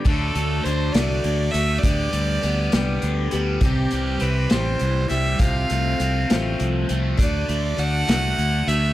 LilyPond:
<<
  \new Staff \with { instrumentName = "Fiddle" } { \time 6/8 \key d \mixolydian \tempo 4. = 67 a'4 c''8 d''4 e''8 | d''2 r4 | g'4 b'8 c''4 e''8 | f''2 r4 |
d''4 fis''4. e''8 | }
  \new Staff \with { instrumentName = "Steel-string acoustic guitar" } { \time 6/8 \key d \mixolydian <d fis a d' fis'>4 <fis a d' fis'>8 <d fis a d' fis'>4 <a d' fis'>8 | <d g b g'>4 <d g b g'>8 <d g b g'>4 <g b g'>8 | <c e g c' g'>4 <e g c' g'>8 <c e g c' g'>4 <g c' g'>8 | <c f a c' f'>4 <f a c' f'>8 <c f a c' f'>4 <a c' f'>8 |
<d a d' fis'>4 <d a d' fis'>8 <d a d' fis'>4 <a d' fis'>8 | }
  \new Staff \with { instrumentName = "Overdriven electric guitar" } { \clef bass \time 6/8 \key d \mixolydian d8 a8 d'8 a8 d8 a8 | d8 g8 b8 g8 d8 g8 | c8 g8 c'8 g8 e8 g8 | c8 a8 c'8 a8 f8 a8 |
d8 a8 d'8 a8 d8 a8 | }
  \new Staff \with { instrumentName = "Fingered electric bass" } { \clef bass \time 6/8 \key d \mixolydian d,8 d,8 d,8 c,8 d,8 d,8 | d,8 d,8 d,8 c,8 d,8 d,8 | c,8 c,8 c,8 a,,8 c,8 c,8 | c,8 c,8 c,8 a,,8 c,8 c,8 |
d,8 d,8 d,8 c,8 d,8 d,8 | }
  \new DrumStaff \with { instrumentName = "Drums" } \drummode { \time 6/8 <cymc bd>8 hh8 hh8 <hh sn>8 hh8 hh8 | <hh bd>8 hh8 hh8 <hh sn>8 hh8 hh8 | <hh bd>8 hh8 hh8 <hh sn>8 hh8 hh8 | <hh bd>8 hh8 hh8 <hh sn>8 hh8 hh8 |
<hh bd>8 hh8 hh8 <hh sn>8 hh8 hh8 | }
>>